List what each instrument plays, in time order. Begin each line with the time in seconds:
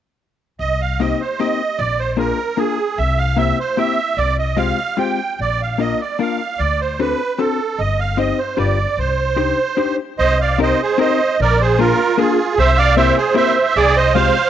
0.59 upright bass C2, accordion D#5
0.81 accordion F5
1.00 hollow-body jazz guitar A#3 C4 D#4 G4, accordion D#5
1.21 accordion C5
1.39 hollow-body jazz guitar A#3 C4 D#4 G4, accordion D#5
1.78 upright bass A#1, accordion D5
2.00 accordion C5
2.17 hollow-body jazz guitar A#3 D4 F4 G#4, accordion A#4
2.57 hollow-body jazz guitar A#3 D4 F4 G#4, accordion G#4
2.98 upright bass C2, accordion E5
3.18 accordion F5
3.37 hollow-body jazz guitar A#3 C4 E4 G4, accordion E5
3.60 accordion C5
3.77 hollow-body jazz guitar A#3 C4 E4 G4, accordion E5
4.17 upright bass C2, accordion D5
4.39 accordion D#5
4.57 hollow-body jazz guitar G#3 C4 F4 G4, accordion F5
4.97 hollow-body jazz guitar G#3 C4 F4 G4, accordion G5
5.39 upright bass A#1, accordion D5
5.63 accordion F5
5.78 hollow-body jazz guitar A#3 D4 F4 A#4, accordion D#5
6.01 accordion D5
6.19 hollow-body jazz guitar A#3 D4 F4 A#4, accordion F5
6.59 upright bass D2, accordion D5
6.81 accordion C5
6.99 hollow-body jazz guitar C4 D4 F#4 A4, accordion B4
7.39 hollow-body jazz guitar C4 D4 F#4 A4, accordion A4
7.79 upright bass G1, accordion D#5
8.00 accordion F5
8.17 hollow-body jazz guitar C4 D#4 G4 C5, accordion D#5
8.39 accordion C5
8.57 upright bass G1, hollow-body jazz guitar D4 F4 G4 B4, accordion D5
8.97 upright bass C2, accordion C5
9.36 hollow-body jazz guitar D4 D#4 G4 C5
9.77 hollow-body jazz guitar D4 D#4 G4 C5
10.19 upright bass C2, accordion C5 D#5
10.41 accordion D5 F5
10.58 hollow-body jazz guitar C4 D#4 G4 A#4, accordion C5 D#5
10.82 accordion G#4 C5
10.98 hollow-body jazz guitar C4 D#4 G4 A#4, accordion C5 D#5
11.40 upright bass A#1, accordion A#4 D5
11.61 accordion G#4 C5
11.79 hollow-body jazz guitar A#3 D4 F4 G#4, accordion F4 A#4
12.17 hollow-body jazz guitar A#3 D4 F4 G#4, accordion F4 G#4
12.58 upright bass C2, accordion C5 E5
12.78 accordion D5 F5
12.96 hollow-body jazz guitar A#3 C4 E4 G4, accordion C5 E5
13.17 accordion G#4 C5
13.34 hollow-body jazz guitar A#3 C4 E4 G4, accordion C5 E5
13.76 upright bass C2, accordion G#4 D5
13.96 accordion C5 D#5
14.14 hollow-body jazz guitar G#3 C4 F4 G4, accordion C5 F5